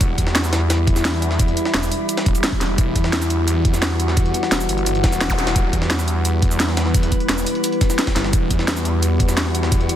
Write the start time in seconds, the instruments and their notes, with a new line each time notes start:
Already playing: synth drone E3 G3
0.01 detuned saw bass E1, synth drone E4, kick, closed hi-hat, cabasa
0.18 detuned saw bass E2, kick, closed hi-hat, cabasa
0.27 snare
0.35 snare, closed hi-hat, cabasa
0.44 snare, cabasa
0.53 snare, closed hi-hat, cabasa
0.70 snare, closed hi-hat, cabasa
0.87 kick, closed hi-hat
0.96 snare, cabasa
1.05 snare, closed hi-hat, cabasa
1.22 closed hi-hat, cabasa
1.31 snare
1.39 kick, closed hi-hat, cabasa
1.48 closed hi-hat
1.57 closed hi-hat, cabasa
1.65 snare
1.74 detuned saw bass E1, snare, closed hi-hat, cabasa
1.83 cabasa
1.91 closed hi-hat, open hi-hat, cabasa
2.09 closed hi-hat, cabasa
2.17 snare, closed hi-hat
2.26 detuned saw bass E1, kick, closed hi-hat
2.35 closed hi-hat, cabasa
2.43 snare, closed hi-hat, cabasa
2.52 kick
2.61 detuned saw bass E1, snare, closed hi-hat, cabasa
2.78 detuned saw bass E1, synth drone F#4, kick, closed hi-hat, cabasa
2.95 detuned saw bass E2, kick, closed hi-hat, cabasa
3.04 snare
3.13 snare, closed hi-hat, cabasa
3.22 snare, cabasa
3.30 closed hi-hat, cabasa
3.48 closed hi-hat, cabasa
3.65 kick, closed hi-hat
3.74 snare, cabasa
3.82 snare, closed hi-hat, cabasa
4.00 closed hi-hat, cabasa
4.08 snare
4.17 kick, closed hi-hat, cabasa
4.26 closed hi-hat
4.34 closed hi-hat, cabasa
4.43 snare
4.52 detuned saw bass E1, snare, closed hi-hat, cabasa
4.60 cabasa
4.69 detuned saw bass G1, closed hi-hat, open hi-hat, cabasa
4.78 closed hi-hat
4.86 closed hi-hat, cabasa
4.95 closed hi-hat
5.04 detuned saw bass E1, kick, snare, closed hi-hat
5.12 snare, cabasa
5.21 snare, closed hi-hat, cabasa
5.30 kick, zap
5.38 snare, closed hi-hat, cabasa
5.47 snare, closed hi-hat
5.56 detuned saw bass E1, synth drone B3, kick, closed hi-hat, cabasa
5.73 detuned saw bass E2, kick, closed hi-hat, cabasa
5.82 snare
5.90 snare, closed hi-hat, cabasa
5.99 snare, cabasa
6.08 closed hi-hat, cabasa
6.25 closed hi-hat, cabasa
6.42 kick, closed hi-hat
6.51 cabasa
6.60 snare, closed hi-hat, cabasa
6.68 snare
6.77 snare, closed hi-hat, cabasa
6.86 snare
6.94 kick, closed hi-hat, cabasa
7.03 closed hi-hat
7.12 kick, closed hi-hat, cabasa
7.20 closed hi-hat
7.29 detuned saw bass E1, snare, closed hi-hat, cabasa
7.38 cabasa
7.46 closed hi-hat, open hi-hat, cabasa
7.55 closed hi-hat
7.64 closed hi-hat, cabasa
7.72 closed hi-hat
7.81 kick, snare, closed hi-hat, cabasa
7.90 snare, cabasa
7.98 snare, closed hi-hat, cabasa
8.07 kick, snare, closed hi-hat
8.16 detuned saw bass G1, snare, closed hi-hat, cabasa
8.24 snare
8.33 detuned saw bass E1, synth drone F#4, kick, closed hi-hat, cabasa
8.50 detuned saw bass E2, kick, closed hi-hat, cabasa
8.59 snare
8.68 snare, closed hi-hat, cabasa
8.76 snare, cabasa
8.85 closed hi-hat, cabasa
9.02 closed hi-hat, cabasa
9.20 kick, closed hi-hat
9.29 snare, cabasa
9.37 snare, closed hi-hat, cabasa
9.55 closed hi-hat, cabasa
9.63 snare
9.72 kick, closed hi-hat, cabasa
9.81 closed hi-hat
9.89 closed hi-hat, cabasa